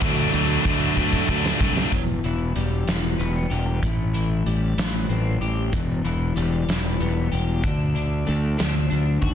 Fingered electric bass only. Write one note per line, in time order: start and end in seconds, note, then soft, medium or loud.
0.02 0.25 D2 medium
0.34 0.57 D2 medium
0.65 0.88 D2 medium
0.97 1.20 D2 medium
1.28 1.52 D2 medium
1.61 1.84 C2 medium
1.92 2.21 E1 medium
2.24 2.53 E1 medium
2.56 2.85 E1 medium
2.88 3.17 E1 medium
3.19 3.48 E1 medium
3.51 3.80 E1 medium
3.83 4.42 A1 medium
4.46 4.75 A1 medium
4.78 5.07 A1 medium
5.09 5.38 A1 medium
5.41 5.70 A1 medium
5.73 6.02 E1 medium
6.05 6.34 E1 medium
6.37 6.66 E1 medium
6.68 6.97 E1 medium
7.00 7.29 E1 medium
7.33 7.61 E1 medium
7.64 8.23 D2 medium
8.29 8.57 D2 medium
8.60 8.88 D2 medium
8.92 9.20 D2 medium
9.22 9.34 D#2 medium